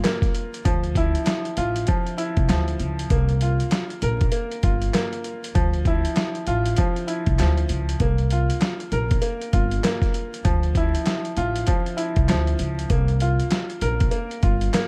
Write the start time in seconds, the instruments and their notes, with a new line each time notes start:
Already playing: upright piano A#3 F4 A#4
0.04 upright piano A#3, snare, clap, closed hi-hat
0.22 kick, snare, closed hi-hat
0.35 closed hi-hat
0.54 closed hi-hat
0.65 upright bass D2, upright piano F3, kick, closed hi-hat
0.84 closed hi-hat
0.95 upright piano E4, kick, closed hi-hat
1.15 closed hi-hat
1.26 snare, clap, closed hi-hat
1.45 closed hi-hat
1.57 upright bass A1, upright piano F4, closed hi-hat
1.76 closed hi-hat
1.87 upright piano F3, kick, closed hi-hat
2.07 closed hi-hat
2.18 upright piano E4, closed hi-hat
2.37 upright bass C2, kick, closed hi-hat
2.49 upright bass D2, upright piano F3, snare, clap, closed hi-hat
2.68 closed hi-hat
2.80 upright bass C#2, closed hi-hat
2.99 closed hi-hat
3.10 upright bass C2, upright piano A#3, kick, closed hi-hat
3.29 closed hi-hat
3.41 upright piano F4, closed hi-hat
3.60 closed hi-hat
3.71 snare, clap, closed hi-hat
3.90 closed hi-hat
4.02 upright bass A#1, upright piano A#4, closed hi-hat
4.21 kick, closed hi-hat
4.32 upright piano A#3, closed hi-hat
4.51 closed hi-hat
4.63 upright bass G1, upright piano F4, kick, closed hi-hat
4.82 closed hi-hat
4.94 upright piano A#3, snare, clap, closed hi-hat
5.13 closed hi-hat
5.24 closed hi-hat
5.44 closed hi-hat
5.55 upright bass D2, upright piano F3, kick, closed hi-hat
5.73 closed hi-hat
5.85 upright piano E4, kick, closed hi-hat
6.05 closed hi-hat
6.16 snare, clap, closed hi-hat
6.35 closed hi-hat
6.47 upright bass A1, upright piano F4, closed hi-hat
6.66 closed hi-hat
6.76 upright piano F3, kick, closed hi-hat
6.96 closed hi-hat
7.08 upright piano E4, closed hi-hat
7.26 upright bass C2, kick, closed hi-hat
7.39 upright bass D2, upright piano F3, snare, clap, closed hi-hat
7.57 closed hi-hat
7.69 upright bass C#2, closed hi-hat
7.89 closed hi-hat
8.00 upright bass C2, upright piano A#3, kick, closed hi-hat
8.18 closed hi-hat
8.31 upright piano F4, closed hi-hat
8.50 closed hi-hat
8.61 snare, clap, closed hi-hat
8.80 closed hi-hat
8.92 upright bass A#1, upright piano A#4, closed hi-hat
9.11 kick, closed hi-hat
9.22 upright piano A#3, closed hi-hat
9.41 closed hi-hat
9.53 upright bass G1, upright piano F4, kick, closed hi-hat
9.71 closed hi-hat
9.84 upright piano A#3, snare, clap, closed hi-hat
10.02 kick, snare, closed hi-hat
10.14 closed hi-hat
10.34 closed hi-hat
10.45 upright bass D2, upright piano F3, kick, closed hi-hat
10.63 closed hi-hat
10.75 upright piano E4, kick, closed hi-hat
10.95 closed hi-hat
11.06 snare, clap, closed hi-hat
11.25 closed hi-hat
11.37 upright bass A1, upright piano F4, closed hi-hat
11.56 closed hi-hat
11.67 upright piano F3, kick, closed hi-hat
11.86 closed hi-hat
11.97 upright piano E4, closed hi-hat
12.16 upright bass C2, kick, closed hi-hat
12.29 upright bass D2, upright piano F3, snare, clap, closed hi-hat
12.47 closed hi-hat
12.59 upright bass C#2, closed hi-hat
12.79 closed hi-hat
12.90 upright bass C2, upright piano A#3, kick, closed hi-hat
13.08 closed hi-hat
13.20 upright piano F4, closed hi-hat
13.40 closed hi-hat
13.51 snare, clap, closed hi-hat
13.70 closed hi-hat
13.81 upright bass A#1, upright piano A#4, closed hi-hat
14.00 kick, closed hi-hat
14.11 upright piano A#3, closed hi-hat
14.31 closed hi-hat
14.43 upright bass G1, upright piano F4, kick, closed hi-hat
14.61 closed hi-hat
14.73 upright piano A#3, snare, clap, closed hi-hat